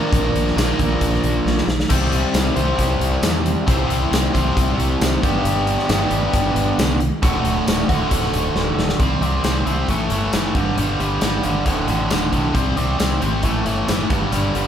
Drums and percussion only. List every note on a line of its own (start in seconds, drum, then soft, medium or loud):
0.13 kick loud
0.13 closed hi-hat loud
0.36 closed hi-hat medium
0.48 snare soft
0.58 snare loud
0.58 closed hi-hat loud
0.58 tambourine loud
0.79 kick medium
0.79 closed hi-hat medium
1.01 kick medium
1.01 closed hi-hat loud
1.14 snare soft
1.24 closed hi-hat medium
1.47 snare medium
1.58 snare medium
1.69 snare loud
1.80 snare medium
1.90 kick loud
1.90 closed hi-hat loud
1.90 crash loud
2.12 closed hi-hat medium
2.34 snare loud
2.34 closed hi-hat loud
2.34 tambourine loud
2.56 closed hi-hat medium
2.79 kick medium
2.79 closed hi-hat loud
3.01 closed hi-hat medium
3.23 snare loud
3.23 closed hi-hat loud
3.23 tambourine loud
3.46 closed hi-hat medium
3.68 kick loud
3.68 closed hi-hat loud
3.90 closed hi-hat medium
4.13 snare loud
4.13 closed hi-hat loud
4.13 tambourine loud
4.35 kick medium
4.35 closed hi-hat medium
4.57 kick medium
4.57 closed hi-hat medium
4.80 closed hi-hat medium
5.01 snare loud
5.01 closed hi-hat loud
5.01 tambourine loud
5.23 kick loud
5.23 closed hi-hat medium
5.45 closed hi-hat loud
5.67 closed hi-hat medium
5.79 snare soft
5.89 snare loud
5.89 closed hi-hat loud
5.89 tambourine loud
6.11 closed hi-hat medium
6.33 kick medium
6.33 closed hi-hat loud
6.56 closed hi-hat medium
6.79 snare loud
6.79 closed hi-hat loud
6.79 tambourine loud
7.00 closed hi-hat medium
7.23 kick loud
7.23 closed hi-hat loud
7.45 closed hi-hat medium
7.68 snare loud
7.68 closed hi-hat loud
7.68 tambourine loud
7.89 kick medium
7.89 closed hi-hat medium
8.11 kick medium
8.11 closed hi-hat loud
8.23 snare soft
8.34 closed hi-hat medium
8.56 snare medium
8.79 snare medium
8.89 snare medium
9.00 kick loud
9.00 closed hi-hat medium
9.22 closed hi-hat medium
9.44 snare loud
9.44 closed hi-hat medium
9.44 tambourine loud
9.67 closed hi-hat medium
9.88 kick medium
9.88 closed hi-hat medium
10.10 closed hi-hat medium
10.33 snare loud
10.33 closed hi-hat loud
10.33 tambourine loud
10.45 snare soft
10.55 kick loud
10.55 closed hi-hat medium
10.78 closed hi-hat loud
11.00 closed hi-hat medium
11.21 snare loud
11.21 closed hi-hat medium
11.21 tambourine loud
11.43 closed hi-hat medium
11.66 kick medium
11.66 closed hi-hat medium
11.88 closed hi-hat medium
12.10 snare loud
12.10 closed hi-hat loud
12.10 tambourine loud
12.33 kick medium
12.33 closed hi-hat medium
12.55 kick loud
12.55 closed hi-hat medium
12.77 closed hi-hat medium
13.00 snare loud
13.00 closed hi-hat medium
13.00 tambourine loud
13.22 closed hi-hat medium
13.43 kick medium
13.43 closed hi-hat medium
13.66 closed hi-hat medium
13.88 snare loud
13.88 closed hi-hat medium
13.88 tambourine loud
14.10 kick loud
14.10 closed hi-hat medium
14.32 closed hi-hat loud
14.55 closed hi-hat medium